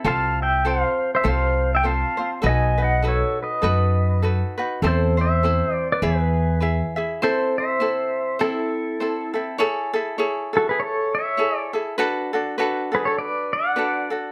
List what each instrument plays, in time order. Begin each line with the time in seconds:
0.04 upright bass C2, ukulele C4 F4 A4 C5, pedal steel guitar F5 A5
0.42 pedal steel guitar E5 G5
0.65 ukulele C4 F4 A4 C5, pedal steel guitar C5 F5
1.15 pedal steel guitar C5 E5
1.24 upright bass C2, ukulele C4 F4 A4 C5
1.28 pedal steel guitar C5 F5
1.75 pedal steel guitar E5 G5
1.83 ukulele C4 F4 A4 C5, pedal steel guitar F5
1.88 pedal steel guitar A5
2.17 ukulele C4 F4 C5
2.42 upright bass B1, ukulele D#4 F#4 A4 B4
2.47 pedal steel guitar D#5 G#5
2.78 ukulele D#4 F#4 B4
2.82 pedal steel guitar D#5 F#5
3.02 ukulele D#4 F#4 A4 B4
3.07 pedal steel guitar A4 C#5
3.43 pedal steel guitar B4 D#5
3.62 upright bass F#2, ukulele D#4 F#4 A4 B4
4.22 ukulele D#4 F#4 A4 B4
4.58 ukulele D#4 F#4 B4
4.82 upright bass E2, ukulele C4 E4 A4 C5
4.87 pedal steel guitar A4 C5
5.17 ukulele C4 E4 C5, pedal steel guitar C5
5.21 pedal steel guitar E5
5.43 ukulele C4 E4 A4 C5
5.75 pedal steel guitar D5
5.92 pedal steel guitar B4 D5
6.02 upright bass E2, ukulele E4 G#4 B4 E5, pedal steel guitar G#4 B4
6.60 ukulele E4 G#4 B4 E5
6.96 ukulele E4 G#4 E5
7.22 ukulele C4 E4 A4 C5, pedal steel guitar A4 C5
7.58 pedal steel guitar C5 E5
7.80 ukulele C4 E4 A4 C5
8.39 ukulele C4 E4 A4 C5, pedal steel guitar A4
8.44 pedal steel guitar E4
9.00 ukulele C4 E4 A4 C5
9.34 ukulele C4 E4 A4
9.58 ukulele E4 G#4 A4 C#5
9.93 ukulele E4 G#4 A4
10.18 ukulele E4 G#4 A4 C#5
10.53 ukulele E4 G#4 A4, pedal steel guitar A4
10.58 pedal steel guitar F#4
10.69 pedal steel guitar G#4 B4
10.80 pedal steel guitar A4 C#5
11.15 pedal steel guitar C#5 E5
11.37 ukulele E4 G#4 A4 C#5
11.58 pedal steel guitar D5
11.73 ukulele E4 G#4 A4
11.98 ukulele D4 F#4 A4 B4
12.33 ukulele D4 F#4 A4
12.58 ukulele D4 F#4 A4 B4
12.92 ukulele D4 F#4 A4, pedal steel guitar B4
12.96 pedal steel guitar G#4
13.05 pedal steel guitar A4 C#5
13.18 pedal steel guitar B4 D5
13.53 pedal steel guitar D5 F#5
13.76 ukulele D4 F#4 A4 B4
14.10 ukulele D4 F#4 A4